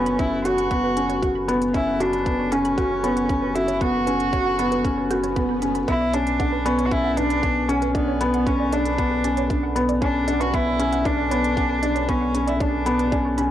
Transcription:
Already playing: sub bass F#1, felt piano B3 C#4 F#4, cello C#4
0.06 synth arpeggio sound B5, closed hi-hat
0.19 felt piano C#4, cello E4, synth arpeggio sound B4, kick, closed hi-hat
0.45 felt piano F#4, cello F#4, synth arpeggio sound C#5, closed hi-hat
0.58 synth arpeggio sound F#5, closed hi-hat
0.71 felt piano B3, synth arpeggio sound B5, kick, closed hi-hat
0.84 synth arpeggio sound B4
0.97 felt piano C#4, closed hi-hat
1.09 synth arpeggio sound C#5, closed hi-hat
1.22 felt piano F#4, synth arpeggio sound F#5, kick, closed hi-hat
1.35 synth arpeggio sound B5
1.48 felt piano B3, synth arpeggio sound B4, closed hi-hat
1.62 closed hi-hat
1.74 felt piano C#4, cello E4, synth arpeggio sound C#5, kick, closed hi-hat
1.87 synth arpeggio sound F#5
2.00 cello D4, felt piano F#4, synth arpeggio sound B5, closed hi-hat
2.13 synth arpeggio sound B4, closed hi-hat
2.26 felt piano B3, kick, closed hi-hat
2.39 synth arpeggio sound C#5
2.52 cello C#4, felt piano C#4, synth arpeggio sound F#5, closed hi-hat
2.65 synth arpeggio sound B5, closed hi-hat
2.78 felt piano F#4, synth arpeggio sound B4, kick, closed hi-hat
3.03 felt piano B3, synth arpeggio sound C#5, closed hi-hat
3.16 synth arpeggio sound F#5, closed hi-hat
3.29 felt piano C#4, synth arpeggio sound B5, kick, closed hi-hat
3.42 synth arpeggio sound B4
3.55 cello E4, felt piano F#4, closed hi-hat
3.68 synth arpeggio sound C#5, closed hi-hat
3.81 felt piano B3, cello F#4, synth arpeggio sound F#5, kick, closed hi-hat
3.94 synth arpeggio sound B5
4.07 felt piano C#4, synth arpeggio sound B4, closed hi-hat
4.20 closed hi-hat
4.33 felt piano F#4, synth arpeggio sound C#5, kick, closed hi-hat
4.46 synth arpeggio sound F#5
4.59 felt piano B3, synth arpeggio sound B5, closed hi-hat
4.72 synth arpeggio sound B4, closed hi-hat
4.85 felt piano C#4, kick, closed hi-hat, swell
4.98 synth arpeggio sound C#5
5.11 felt piano F#4, synth arpeggio sound G6, closed hi-hat
5.23 synth arpeggio sound C#5, closed hi-hat
5.36 felt piano B3, synth arpeggio sound B5, kick, closed hi-hat
5.49 synth arpeggio sound B5
5.62 felt piano C#4, synth arpeggio sound B5, closed hi-hat
5.75 synth arpeggio sound B5, closed hi-hat
5.88 sub bass B1, felt piano B3, cello E4, synth arpeggio sound B4, kick, closed hi-hat
6.00 synth arpeggio sound D5
6.13 felt piano C#4, cello D4, synth arpeggio sound C#5, closed hi-hat
6.27 closed hi-hat
6.39 felt piano D4, synth arpeggio sound F#5, kick, closed hi-hat
6.52 synth arpeggio sound B4
6.65 felt piano B3, cello C#4, synth arpeggio sound D5, closed hi-hat
6.78 synth arpeggio sound C#5, closed hi-hat
6.85 cello F#4
6.91 felt piano C#4, cello E4, kick, closed hi-hat
7.04 synth arpeggio sound F#5
7.11 cello E4
7.17 cello D4, felt piano D4, synth arpeggio sound B4, closed hi-hat
7.30 synth arpeggio sound D5, closed hi-hat
7.43 felt piano B3, synth arpeggio sound C#5, kick, closed hi-hat
7.68 cello C#4, felt piano C#4, synth arpeggio sound F#5, closed hi-hat
7.82 synth arpeggio sound B4, closed hi-hat
7.95 cello B3, felt piano D4, synth arpeggio sound D5, kick, closed hi-hat
8.08 synth arpeggio sound C#5
8.21 felt piano B3, closed hi-hat
8.34 synth arpeggio sound F#5, closed hi-hat
8.47 cello C#4, felt piano C#4, synth arpeggio sound B4, kick, closed hi-hat
8.60 synth arpeggio sound D5
8.72 cello D4, felt piano D4, synth arpeggio sound C#5, closed hi-hat
8.86 closed hi-hat
8.98 felt piano B3, synth arpeggio sound F#5, kick, closed hi-hat
9.12 synth arpeggio sound B4
9.24 felt piano C#4, synth arpeggio sound D5, closed hi-hat
9.37 synth arpeggio sound C#5, closed hi-hat
9.50 felt piano D4, kick, closed hi-hat
9.63 synth arpeggio sound F#5
9.76 felt piano B3, synth arpeggio sound B4, closed hi-hat
9.89 synth arpeggio sound D5, closed hi-hat
10.02 felt piano C#4, cello D4, synth arpeggio sound C#5, kick, closed hi-hat
10.28 felt piano D4, synth arpeggio sound F#5, closed hi-hat
10.40 cello F#4, synth arpeggio sound B4, closed hi-hat
10.53 felt piano B3, cello E4, synth arpeggio sound D5, kick, closed hi-hat
10.67 synth arpeggio sound C#5
10.79 felt piano C#4, closed hi-hat
10.92 synth arpeggio sound F#5, closed hi-hat
11.05 felt piano D4, cello D4, synth arpeggio sound B4, kick, closed hi-hat
11.18 synth arpeggio sound D5
11.31 felt piano B3, synth arpeggio sound C#5, closed hi-hat
11.44 closed hi-hat
11.57 felt piano C#4, synth arpeggio sound F#5, kick, closed hi-hat
11.69 synth arpeggio sound B4
11.82 felt piano D4, synth arpeggio sound D5, closed hi-hat
11.96 synth arpeggio sound C#5, closed hi-hat
12.09 felt piano B3, cello C#4, kick, closed hi-hat
12.21 synth arpeggio sound F#5
12.34 felt piano C#4, synth arpeggio sound B4, closed hi-hat
12.47 cello E4, synth arpeggio sound D5, closed hi-hat
12.60 felt piano D4, cello D4, synth arpeggio sound C#5, kick, closed hi-hat
12.86 felt piano B3, synth arpeggio sound F#5, closed hi-hat
12.99 synth arpeggio sound B4, closed hi-hat
13.12 felt piano C#4, synth arpeggio sound D5, kick, closed hi-hat
13.25 synth arpeggio sound C#5
13.38 felt piano C#4, synth arpeggio sound B5, closed hi-hat

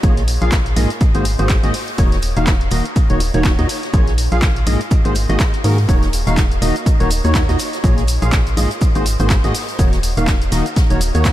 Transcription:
0.03 fm bass A#1, synth stab A#2 A#3 F4 G#4 C#5, kick, closed hi-hat, shaker
0.17 snare, closed hi-hat
0.28 open hi-hat, shaker
0.42 fm bass A#1, synth stab A#2 A#3 F4 G#4 F5, closed hi-hat
0.52 kick, snare, clap, closed hi-hat, shaker
0.66 closed hi-hat
0.76 fm bass A#1, synth stab G#2 A#3 F4 G#4 D#5, open hi-hat, shaker
0.90 closed hi-hat
1.01 kick, closed hi-hat, shaker
1.15 fm bass G#1, synth stab G#2 A#3 F#4 G#4 C5, closed hi-hat
1.25 open hi-hat, shaker
1.39 fm bass G#1, synth stab G#2 A#3 F#4 G#4 C5, closed hi-hat
1.49 kick, snare, clap, closed hi-hat, shaker
1.63 fm bass G#1, synth stab G#2 A#3 F#4 G#4 D#5, snare, closed hi-hat
1.74 open hi-hat
1.88 closed hi-hat
1.98 fm bass D#1, synth stab D#3 A#3 D#4 F#4 C#5, kick, closed hi-hat, shaker
2.12 snare, closed hi-hat
2.22 open hi-hat, shaker
2.37 fm bass D#1, synth stab D#3 A#3 D#4 F#4 F5, closed hi-hat
2.47 kick, snare, clap, closed hi-hat, shaker
2.61 closed hi-hat
2.71 fm bass D#1, synth stab D#3 A#3 D#4 F#4 D#5, open hi-hat, shaker
2.85 closed hi-hat
2.96 kick, closed hi-hat, shaker
3.10 fm bass D#1, synth stab D#3 A#3 D#4 F#4 C#5, closed hi-hat
3.20 open hi-hat, shaker
3.34 fm bass D#1, synth stab D#3 A#3 D#4 F#4 C#5, closed hi-hat
3.44 kick, snare, clap, closed hi-hat, shaker
3.59 fm bass D#2, synth stab A#2 A#3 D#4 F#4 D#5, snare, closed hi-hat
3.69 open hi-hat, shaker
3.83 snare, closed hi-hat
3.93 fm bass A#1, synth stab A#2 A#3 F4 G#4 C#5, kick, closed hi-hat, shaker
4.08 snare, closed hi-hat
4.18 open hi-hat, shaker
4.32 fm bass A#1, synth stab A#2 A#3 F4 G#4 F5, closed hi-hat
4.42 kick, snare, clap, closed hi-hat, shaker
4.56 closed hi-hat
4.67 fm bass A#1, synth stab G#2 A#3 F4 G#4 D#5, open hi-hat, shaker
4.81 closed hi-hat
4.91 kick, closed hi-hat, shaker
5.05 fm bass G#1, synth stab G#2 A#3 F#4 G#4 C5, closed hi-hat
5.15 open hi-hat, shaker
5.29 fm bass G#1, synth stab G#2 A#3 F#4 G#4 D#5, closed hi-hat
5.40 kick, snare, clap, closed hi-hat, shaker
5.53 snare, closed hi-hat
5.64 fm bass G#2, synth stab D#3 A#3 F#4 G#4 A#4, open hi-hat
5.78 closed hi-hat
5.89 fm bass D#1, synth stab D#3 A#3 D#4 F#4 C#5, kick, closed hi-hat, cabasa, shaker
6.02 snare, closed hi-hat, cabasa
6.13 open hi-hat, cabasa, shaker
6.27 fm bass D#1, synth stab D#3 A#3 D#4 F#4 F5, closed hi-hat, cabasa
6.37 kick, snare, clap, closed hi-hat, cabasa, shaker
6.52 closed hi-hat, cabasa
6.62 fm bass D#1, synth stab D#3 A#3 D#4 F#4 D#5, open hi-hat, cabasa, shaker
6.76 closed hi-hat, cabasa
6.86 kick, closed hi-hat, cabasa, shaker
7.00 fm bass D#1, synth stab D#3 A#3 D#4 F#4 C#5, closed hi-hat, cabasa
7.11 open hi-hat, cabasa, shaker
7.25 fm bass D#2, synth stab D#3 A#3 D#4 F#4 C#5, closed hi-hat, cabasa
7.35 kick, snare, clap, closed hi-hat, cabasa, shaker
7.49 fm bass D#2, synth stab A#2 A#3 D#4 F#4 D#5, snare, closed hi-hat, cabasa
7.59 open hi-hat, cabasa, shaker
7.73 snare, closed hi-hat, cabasa
7.84 fm bass A#1, synth stab A#2 A#3 F4 G#4 C#5, kick, closed hi-hat, cabasa, shaker
7.98 snare, closed hi-hat, cabasa
8.08 open hi-hat, cabasa, shaker
8.22 fm bass A#1, synth stab A#2 A#3 F4 G#4 F5, closed hi-hat, cabasa
8.32 kick, snare, clap, closed hi-hat, cabasa, shaker
8.47 closed hi-hat, cabasa
8.57 fm bass A#1, synth stab G#2 A#3 F4 G#4 D#5, open hi-hat, cabasa, shaker
8.71 closed hi-hat, cabasa
8.81 kick, closed hi-hat, cabasa, shaker
8.95 fm bass G#1, synth stab G#2 A#3 F#4 G#4 C5, closed hi-hat, cabasa
9.06 open hi-hat, cabasa, shaker
9.20 fm bass G#1, synth stab G#2 A#3 F#4 G#4 C5, closed hi-hat, cabasa
9.30 kick, snare, clap, closed hi-hat, cabasa, shaker
9.44 fm bass G#1, synth stab G#2 A#3 F#4 G#4 D#5, snare, closed hi-hat, cabasa
9.55 open hi-hat, cabasa
9.69 closed hi-hat, cabasa
9.79 fm bass D#1, synth stab D#3 A#3 D#4 F#4 C#5, kick, closed hi-hat, cabasa, shaker
9.93 snare, closed hi-hat, cabasa
10.03 open hi-hat, cabasa, shaker
10.17 fm bass D#1, synth stab D#3 A#3 D#4 F#4 F5, closed hi-hat, cabasa
10.27 kick, snare, clap, closed hi-hat, cabasa, shaker
10.42 closed hi-hat, cabasa
10.52 fm bass D#1, synth stab D#3 A#3 D#4 F#4 D#5, snare, open hi-hat, cabasa, shaker
10.66 closed hi-hat, cabasa
10.76 kick, snare, closed hi-hat, cabasa, shaker
10.90 fm bass D#1, synth stab D#3 A#3 D#4 F#4 C#5, closed hi-hat, cabasa
11.01 open hi-hat, cabasa, shaker
11.15 fm bass D#2, synth stab D#3 A#3 D#4 F#4 C#5, closed hi-hat, cabasa
11.25 kick, snare, clap, closed hi-hat, cabasa, shaker

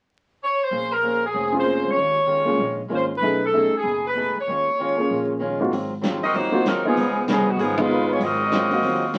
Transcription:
0.43 saxophone section C#5
0.63 saxophone section C5
0.71 upright bass A#1, steel-string acoustic guitar A#3 C#4 G#4 C5
0.92 saxophone section A#4
1.03 steel-string acoustic guitar A#3 C#4 G#4 C5
1.26 saxophone section G#4
1.33 upright bass F1, steel-string acoustic guitar A#3 C#4 G#4 C5
1.52 grand piano C4 C#4 F4 G#4
1.59 saxophone section C5
1.64 steel-string acoustic guitar A#3 C#4 G#4 C5
1.85 upright bass C#2
1.91 saxophone section C#5
1.96 upright bass D#2, steel-string acoustic guitar D#3 G#3 C#4 F4
2.26 steel-string acoustic guitar D#3 G#3 C#4 F4
2.45 upright bass C#2, grand piano A#3 C#4 F4 G#4
2.57 upright bass A#1, steel-string acoustic guitar D#3 G#3 C#4 F4
2.88 upright bass G#1, steel-string acoustic guitar D#3 G#3 C#4 F4, grand piano A#3 C#4 F4 A#4
2.95 saxophone section C5
3.16 saxophone section B4
3.21 upright bass B1, steel-string acoustic guitar B2 A3 D#4 G#4, grand piano A3 C#4 D#4 G#4
3.46 saxophone section A4
3.53 steel-string acoustic guitar B2 A3 D#4 G#4, grand piano A3 C#4 D#4 G#4
3.73 muted upright bass stroke
3.77 saxophone section G#4
3.83 upright bass F#1, steel-string acoustic guitar B2 A3 D#4 G#4
4.07 saxophone section B4
4.14 steel-string acoustic guitar B2 A3 D#4 G#4
4.36 muted upright bass stroke
4.40 saxophone section C#5
4.47 upright bass D#2, steel-string acoustic guitar D#3 G#3 C#4 F4
4.79 steel-string acoustic guitar D#3 G#3 C#4 F4
4.97 grand piano A#3 C#4 F4 G#4
5.09 upright bass A#1, steel-string acoustic guitar D#3 G#3 C#4
5.13 steel-string acoustic guitar F4
5.39 steel-string acoustic guitar D#3 G#3 C#4 F4
5.60 grand piano G#2 A#3 C4 F4 F#4
5.70 upright bass G#1, steel-string acoustic guitar G#2 F#3 C4 F4, open hi-hat
6.01 steel-string acoustic guitar G#2 F#3 C4 F4, snare, closed hi-hat
6.22 saxophone section C4 F#4 A#4 D#5, muted upright bass stroke, open hi-hat
6.33 upright bass D#2, steel-string acoustic guitar G#2 F#3 C4 F4, saxophone section A#3 D#4 F#4 C5, open hi-hat
6.52 grand piano A#3 C4 F4 F#4
6.64 upright bass D#2, steel-string acoustic guitar G#2 F#3 C4 F4, saxophone section F#3 C4 D#4, snare, closed hi-hat
6.68 saxophone section A#4
6.84 saxophone section F3 B3 G#4, grand piano A#3 B3 D#4 F4
6.88 saxophone section D#4
6.96 upright bass C#2, steel-string acoustic guitar C#3 B3 F4 A#4, open hi-hat
7.26 upright bass C2, steel-string acoustic guitar C#3 B3 F4 A#4, snare, closed hi-hat
7.31 saxophone section F3 B3 D#4 G#4
7.51 saxophone section D#3 G#3 B3 F#4
7.57 upright bass G#1, steel-string acoustic guitar C#3 B3 F4, saxophone section B3 D#4 F#4 G#4, open hi-hat
7.61 saxophone section F3, steel-string acoustic guitar A#4
7.77 grand piano G#3 B3 D#4 F4, saxophone section D#4 F4 B4, kick, ride
7.81 saxophone section G#3
7.89 steel-string acoustic guitar C#3 B3 F4 A#4
8.13 saxophone section B3 F4 G#4 C#5
8.19 upright bass G#1, steel-string acoustic guitar G#2 F#3 C4 F4, open hi-hat
8.23 saxophone section C4 F#4 A#4 D#5
8.51 steel-string acoustic guitar G#2 F#3 C4 F4, snare, closed hi-hat
8.70 grand piano A#3 C4 F#4 F5, open hi-hat
8.82 upright bass D#2, steel-string acoustic guitar G#2 F#3 C4 F4, open hi-hat
9.14 steel-string acoustic guitar G#2 F#3, snare, closed hi-hat

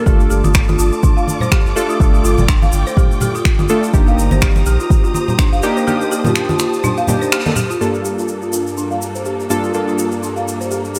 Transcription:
0.06 sub bass G1, synth keys A3 D4 F4 A4, string section F4 D5 A5 D6, marimba G4, kick, high conga, shaker
0.20 shaker
0.30 sub bass G1, marimba G4, shaker
0.44 sub bass G1, marimba F4, high conga, shaker
0.54 finger snap, kick, shaker
0.68 marimba F4, high conga, shaker
0.79 sub bass G1, marimba F4, shaker
0.93 shaker
1.03 marimba D4, kick, high conga, shaker
1.17 marimba F5, shaker
1.28 high conga, shaker
1.40 marimba C5, low conga, shaker
1.52 marimba G4, finger snap, kick, shaker
1.65 sub bass G1, shaker
1.76 synth keys A3 D4 F4 A4, marimba G4, shaker
1.90 marimba F4, shaker
2.00 sub bass G1, synth keys A3 D4 F4 A4, string section G5, kick, shaker
2.14 marimba F4, shaker
2.24 sub bass G1, marimba F4, shaker
2.38 sub bass G1, high conga, low conga, shaker
2.48 marimba D4, finger snap, kick, shaker
2.62 marimba F5, high conga, shaker
2.72 sub bass G1, shaker
2.87 marimba C5, shaker
2.97 marimba G4, kick, low conga, shaker
3.11 shaker
3.21 marimba G4, high conga, low conga, shaker
3.35 marimba F4, shaker
3.45 finger snap, kick, shaker
3.59 sub bass G1, marimba F4, high conga, shaker
3.69 synth keys A3 D4 F4 A4, marimba F4, shaker
3.83 shaker
3.94 sub bass G1, synth keys A#3 D4 D#4 G4, marimba D4, string section G4 C5 A#5 D#6, kick, high conga, shaker
4.07 marimba F5, shaker
4.17 sub bass G1, shaker
4.31 sub bass G1, marimba C5, high conga, shaker
4.41 marimba G4, finger snap, kick, shaker
4.56 high conga, shaker
4.66 sub bass A#1, marimba G4, shaker
4.80 marimba F4, shaker
4.90 kick, high conga, shaker
5.04 marimba F4, shaker
5.14 marimba F4, high conga, shaker
5.28 low conga, shaker
5.39 marimba D4, finger snap, kick, shaker
5.52 sub bass G1, marimba F5, shaker
5.63 synth keys A#3 D4 D#4 G4, shaker
5.77 marimba C5, shaker
5.87 synth keys A#3 D4 D#4 G4, marimba G4, string section A5, high conga, shaker
6.01 shaker
6.11 marimba G4, shaker
6.25 marimba F4, high conga, low conga, shaker
6.36 finger snap, shaker
6.49 marimba F4, high conga, shaker
6.59 marimba F4, finger snap, shaker
6.73 shaker
6.84 marimba D4, low conga, shaker
6.97 marimba F5, shaker
7.07 synth keys A#3 D4 D#4 G4, high conga, low conga, shaker
7.22 marimba C5, shaker
7.32 marimba G4, finger snap, shaker
7.45 synth keys A#3 D4 D#4 A4, high conga, shaker
7.56 marimba G4, low conga, shaker
7.70 marimba F4, shaker
7.81 synth keys G2 A#3 D4 F4 A4, string section G3 A#3 D4 A4, marimba G4, shaker
7.94 shaker
8.05 marimba G4, shaker
8.18 marimba F4, shaker
8.28 shaker
8.42 marimba F4, shaker
8.53 marimba F4, shaker
8.67 shaker
8.77 marimba D4, shaker
8.91 marimba F5, shaker
9.02 shaker
9.15 marimba C5, shaker
9.25 marimba G4, shaker
9.40 shaker
9.50 synth keys G2 A#3 D4 F4 A4, marimba G4, shaker
9.64 marimba F4, shaker
9.74 synth keys G2 A#3 D4 F4 A4, shaker
9.88 marimba F4, shaker
9.99 marimba F4, shaker
10.12 shaker
10.23 marimba D4, shaker
10.36 marimba F5, shaker
10.48 shaker
10.61 marimba C5, shaker
10.71 marimba G4, shaker
10.85 shaker
10.95 marimba G4, shaker

